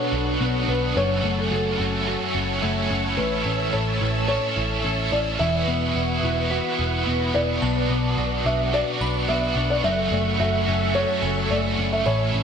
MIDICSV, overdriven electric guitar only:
0, 0, Header, 1, 2, 480
1, 0, Start_track
1, 0, Tempo, 555556
1, 823, Time_signature, 4, 2, 24, 8
1, 10740, End_track
2, 0, Start_track
2, 0, Title_t, "Overdriven electric guitar"
2, 0, Program_c, 0, 29
2, 0, Note_on_c, 0, 54, 62
2, 0, Note_on_c, 0, 59, 59
2, 0, Note_on_c, 0, 62, 64
2, 0, Note_on_c, 0, 66, 62
2, 334, Note_off_c, 0, 54, 0
2, 337, Note_on_c, 0, 54, 57
2, 346, Note_off_c, 0, 59, 0
2, 354, Note_off_c, 0, 62, 0
2, 356, Note_on_c, 0, 59, 58
2, 367, Note_on_c, 0, 62, 53
2, 374, Note_off_c, 0, 66, 0
2, 378, Note_on_c, 0, 66, 65
2, 824, Note_on_c, 0, 42, 65
2, 830, Note_off_c, 0, 59, 0
2, 832, Note_on_c, 0, 49, 80
2, 834, Note_off_c, 0, 54, 0
2, 835, Note_off_c, 0, 62, 0
2, 837, Note_on_c, 0, 52, 64
2, 842, Note_on_c, 0, 57, 69
2, 845, Note_on_c, 0, 61, 77
2, 847, Note_off_c, 0, 66, 0
2, 850, Note_on_c, 0, 66, 87
2, 1525, Note_off_c, 0, 66, 0
2, 1535, Note_on_c, 0, 66, 45
2, 1544, Note_off_c, 0, 42, 0
2, 1548, Note_off_c, 0, 49, 0
2, 1548, Note_off_c, 0, 61, 0
2, 1551, Note_on_c, 0, 61, 39
2, 1558, Note_off_c, 0, 57, 0
2, 1561, Note_off_c, 0, 52, 0
2, 1562, Note_on_c, 0, 57, 43
2, 1573, Note_on_c, 0, 52, 33
2, 1762, Note_off_c, 0, 52, 0
2, 1772, Note_on_c, 0, 52, 63
2, 1776, Note_off_c, 0, 57, 0
2, 1779, Note_off_c, 0, 66, 0
2, 1787, Note_off_c, 0, 61, 0
2, 1787, Note_on_c, 0, 57, 67
2, 1799, Note_on_c, 0, 61, 69
2, 1812, Note_on_c, 0, 66, 63
2, 2251, Note_off_c, 0, 52, 0
2, 2255, Note_on_c, 0, 52, 64
2, 2263, Note_off_c, 0, 57, 0
2, 2267, Note_on_c, 0, 57, 60
2, 2277, Note_off_c, 0, 61, 0
2, 2278, Note_off_c, 0, 66, 0
2, 2281, Note_on_c, 0, 61, 64
2, 2293, Note_on_c, 0, 66, 75
2, 2729, Note_on_c, 0, 45, 73
2, 2746, Note_off_c, 0, 52, 0
2, 2746, Note_on_c, 0, 52, 72
2, 2756, Note_off_c, 0, 57, 0
2, 2756, Note_on_c, 0, 57, 77
2, 2758, Note_off_c, 0, 66, 0
2, 2764, Note_off_c, 0, 61, 0
2, 2764, Note_on_c, 0, 61, 78
2, 2775, Note_on_c, 0, 64, 78
2, 2787, Note_on_c, 0, 69, 70
2, 3683, Note_off_c, 0, 57, 0
2, 3693, Note_on_c, 0, 57, 66
2, 3696, Note_off_c, 0, 45, 0
2, 3699, Note_off_c, 0, 61, 0
2, 3710, Note_on_c, 0, 61, 60
2, 3717, Note_off_c, 0, 64, 0
2, 3720, Note_on_c, 0, 64, 63
2, 3722, Note_off_c, 0, 69, 0
2, 3733, Note_on_c, 0, 69, 66
2, 4160, Note_off_c, 0, 57, 0
2, 4171, Note_on_c, 0, 57, 56
2, 4175, Note_off_c, 0, 61, 0
2, 4185, Note_on_c, 0, 61, 52
2, 4193, Note_off_c, 0, 64, 0
2, 4196, Note_on_c, 0, 64, 63
2, 4198, Note_off_c, 0, 69, 0
2, 4207, Note_on_c, 0, 69, 72
2, 4654, Note_off_c, 0, 57, 0
2, 4658, Note_off_c, 0, 52, 0
2, 4658, Note_on_c, 0, 52, 70
2, 4664, Note_off_c, 0, 61, 0
2, 4669, Note_on_c, 0, 59, 73
2, 4673, Note_off_c, 0, 64, 0
2, 4675, Note_off_c, 0, 69, 0
2, 4677, Note_on_c, 0, 64, 70
2, 4683, Note_on_c, 0, 66, 90
2, 5373, Note_off_c, 0, 66, 0
2, 5377, Note_on_c, 0, 66, 50
2, 5380, Note_off_c, 0, 52, 0
2, 5386, Note_off_c, 0, 64, 0
2, 5397, Note_on_c, 0, 64, 46
2, 5410, Note_off_c, 0, 59, 0
2, 5413, Note_on_c, 0, 59, 43
2, 5617, Note_on_c, 0, 52, 60
2, 5619, Note_off_c, 0, 59, 0
2, 5620, Note_off_c, 0, 66, 0
2, 5629, Note_on_c, 0, 59, 77
2, 5630, Note_off_c, 0, 64, 0
2, 5641, Note_on_c, 0, 64, 75
2, 5650, Note_on_c, 0, 66, 81
2, 6076, Note_off_c, 0, 52, 0
2, 6086, Note_on_c, 0, 52, 62
2, 6097, Note_off_c, 0, 59, 0
2, 6101, Note_on_c, 0, 59, 69
2, 6104, Note_off_c, 0, 64, 0
2, 6114, Note_on_c, 0, 64, 60
2, 6122, Note_off_c, 0, 66, 0
2, 6125, Note_on_c, 0, 66, 68
2, 6563, Note_on_c, 0, 47, 68
2, 6574, Note_off_c, 0, 52, 0
2, 6578, Note_on_c, 0, 54, 77
2, 6588, Note_off_c, 0, 64, 0
2, 6591, Note_off_c, 0, 59, 0
2, 6594, Note_on_c, 0, 59, 80
2, 6604, Note_on_c, 0, 62, 75
2, 6617, Note_off_c, 0, 66, 0
2, 6620, Note_on_c, 0, 66, 77
2, 7528, Note_off_c, 0, 54, 0
2, 7532, Note_on_c, 0, 54, 63
2, 7533, Note_off_c, 0, 47, 0
2, 7535, Note_off_c, 0, 59, 0
2, 7544, Note_off_c, 0, 62, 0
2, 7545, Note_on_c, 0, 59, 65
2, 7555, Note_on_c, 0, 62, 66
2, 7565, Note_off_c, 0, 66, 0
2, 7568, Note_on_c, 0, 66, 66
2, 8009, Note_off_c, 0, 54, 0
2, 8012, Note_on_c, 0, 54, 62
2, 8014, Note_off_c, 0, 59, 0
2, 8024, Note_on_c, 0, 59, 49
2, 8026, Note_off_c, 0, 62, 0
2, 8037, Note_on_c, 0, 62, 59
2, 8043, Note_off_c, 0, 66, 0
2, 8046, Note_on_c, 0, 66, 66
2, 8494, Note_on_c, 0, 42, 76
2, 8500, Note_off_c, 0, 54, 0
2, 8501, Note_on_c, 0, 49, 83
2, 8503, Note_on_c, 0, 52, 72
2, 8504, Note_off_c, 0, 59, 0
2, 8510, Note_off_c, 0, 62, 0
2, 8512, Note_on_c, 0, 57, 84
2, 8515, Note_off_c, 0, 66, 0
2, 8515, Note_on_c, 0, 61, 73
2, 8519, Note_on_c, 0, 66, 85
2, 9200, Note_off_c, 0, 66, 0
2, 9210, Note_on_c, 0, 66, 49
2, 9219, Note_off_c, 0, 42, 0
2, 9220, Note_off_c, 0, 61, 0
2, 9222, Note_off_c, 0, 49, 0
2, 9224, Note_on_c, 0, 61, 42
2, 9235, Note_off_c, 0, 57, 0
2, 9236, Note_off_c, 0, 52, 0
2, 9239, Note_on_c, 0, 57, 36
2, 9248, Note_on_c, 0, 52, 37
2, 9444, Note_off_c, 0, 52, 0
2, 9454, Note_on_c, 0, 52, 55
2, 9457, Note_off_c, 0, 57, 0
2, 9457, Note_off_c, 0, 66, 0
2, 9463, Note_off_c, 0, 61, 0
2, 9467, Note_on_c, 0, 57, 62
2, 9479, Note_on_c, 0, 61, 69
2, 9492, Note_on_c, 0, 66, 62
2, 9930, Note_off_c, 0, 52, 0
2, 9933, Note_on_c, 0, 52, 50
2, 9942, Note_off_c, 0, 57, 0
2, 9945, Note_on_c, 0, 57, 57
2, 9958, Note_off_c, 0, 66, 0
2, 9970, Note_on_c, 0, 66, 62
2, 10420, Note_on_c, 0, 45, 73
2, 10423, Note_off_c, 0, 52, 0
2, 10423, Note_on_c, 0, 52, 73
2, 10428, Note_off_c, 0, 57, 0
2, 10428, Note_on_c, 0, 57, 80
2, 10434, Note_off_c, 0, 61, 0
2, 10434, Note_on_c, 0, 61, 74
2, 10437, Note_off_c, 0, 66, 0
2, 10438, Note_on_c, 0, 64, 82
2, 10443, Note_on_c, 0, 69, 84
2, 10740, Note_off_c, 0, 45, 0
2, 10740, Note_off_c, 0, 52, 0
2, 10740, Note_off_c, 0, 57, 0
2, 10740, Note_off_c, 0, 61, 0
2, 10740, Note_off_c, 0, 64, 0
2, 10740, Note_off_c, 0, 69, 0
2, 10740, End_track
0, 0, End_of_file